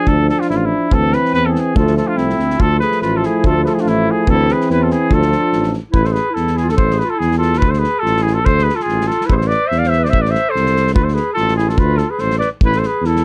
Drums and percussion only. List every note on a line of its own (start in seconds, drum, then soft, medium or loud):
0.07 kick medium
0.29 snare soft
0.42 snare soft
0.51 snare soft
0.91 kick medium
1.13 snare soft
1.25 snare soft
1.34 snare soft
1.55 snare soft
1.76 kick loud
1.87 snare soft
1.97 snare soft
2.18 snare soft
2.30 snare soft
2.39 snare soft
2.50 snare soft
2.60 kick medium
2.81 snare soft
2.92 snare soft
3.02 snare soft
3.23 snare soft
3.44 kick medium
3.66 snare soft
3.78 snare soft
3.87 snare soft
4.27 kick medium
4.49 snare soft
4.61 snare soft
4.70 snare soft
4.90 snare soft
5.11 kick medium
5.22 snare soft
5.32 snare soft
5.53 snare soft
5.63 snare soft
5.73 snare soft
5.94 kick medium
6.05 snare soft
6.15 snare soft
6.36 snare soft
6.47 snare soft
6.57 snare soft
6.69 snare soft
6.78 kick medium
6.91 snare soft
7.00 snare soft
7.21 snare soft
7.32 snare soft
7.42 snare soft
7.53 snare soft
7.62 kick medium
7.73 snare soft
7.84 snare soft
8.06 snare soft
8.17 snare soft
8.27 snare soft
8.46 kick medium
8.59 snare soft
8.69 snare soft
8.80 snare soft
8.89 snare soft
9.01 snare soft
9.10 snare soft
9.21 snare soft
9.29 kick medium
9.41 snare soft
9.50 snare soft
9.72 snare soft
9.84 snare soft
9.93 snare soft
10.05 snare soft
10.13 kick medium
10.25 snare soft
10.35 snare soft
10.56 snare soft
10.66 snare soft
10.76 snare soft
10.87 snare soft
10.96 kick loud
11.08 snare soft
11.17 snare soft
11.37 snare soft
11.48 snare soft
11.58 snare soft
11.69 snare soft
11.78 kick medium
11.98 snare soft
12.19 snare soft
12.31 snare soft
12.41 snare soft
12.61 kick medium
12.73 snare soft
12.83 snare soft
13.04 snare soft
13.16 snare soft